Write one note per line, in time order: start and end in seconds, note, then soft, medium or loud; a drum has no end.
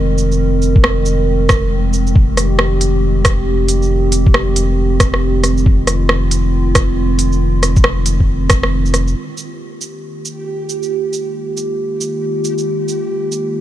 0.00 2.14 F1 medium
0.00 9.12 D#3 medium
0.00 9.12 G#3 medium
0.00 9.12 C4 medium
0.00 2.14 A#4 medium
0.18 shaker medium
0.32 shaker soft
0.62 shaker medium
0.76 kick loud
0.84 cross-stick loud
1.06 shaker medium
1.49 kick loud
1.49 cross-stick loud
1.49 shaker medium
1.93 shaker medium
2.07 shaker soft
2.15 9.14 F1 medium
2.15 5.65 G4 medium
2.15 kick loud
2.37 cross-stick medium
2.37 open hi-hat medium
2.37 shaker soft
2.59 cross-stick loud
2.81 open hi-hat medium
2.81 shaker medium
3.25 kick loud
3.25 cross-stick loud
3.25 open hi-hat medium
3.25 shaker medium
3.69 open hi-hat medium
3.69 shaker medium
3.82 shaker soft
4.12 open hi-hat medium
4.12 shaker medium
4.26 kick loud
4.34 cross-stick loud
4.56 open hi-hat medium
4.56 shaker soft
5.00 kick loud
5.00 cross-stick medium
5.00 open hi-hat medium
5.00 shaker soft
5.14 cross-stick medium
5.44 cross-stick soft
5.44 open hi-hat medium
5.44 shaker soft
5.57 shaker soft
5.66 9.14 F4 medium
5.66 kick loud
5.87 cross-stick medium
5.87 open hi-hat medium
5.87 shaker soft
6.09 cross-stick loud
6.31 open hi-hat medium
6.31 shaker medium
6.75 kick loud
6.75 cross-stick loud
6.75 open hi-hat medium
6.75 shaker medium
7.19 open hi-hat medium
7.19 shaker medium
7.32 shaker soft
7.63 cross-stick medium
7.63 open hi-hat medium
7.63 shaker medium
7.76 kick loud
7.76 shaker soft
7.84 cross-stick loud
8.06 open hi-hat medium
8.06 shaker medium
8.20 kick medium
8.50 kick loud
8.50 cross-stick loud
8.50 open hi-hat medium
8.50 shaker medium
8.63 cross-stick medium
8.86 shaker soft
8.94 cross-stick medium
8.94 open hi-hat medium
8.94 shaker medium
9.08 shaker soft
9.15 13.61 D#3 medium
9.15 13.61 G#3 medium
9.15 13.61 A#3 medium
9.15 13.61 F4 medium
9.15 13.61 G4 medium
9.37 shaker soft
9.81 shaker medium
10.25 shaker soft
10.69 shaker soft
10.83 shaker soft
11.13 shaker soft
11.57 shaker soft
12.01 shaker medium
12.44 shaker medium
12.58 shaker soft
12.88 shaker soft
13.32 shaker soft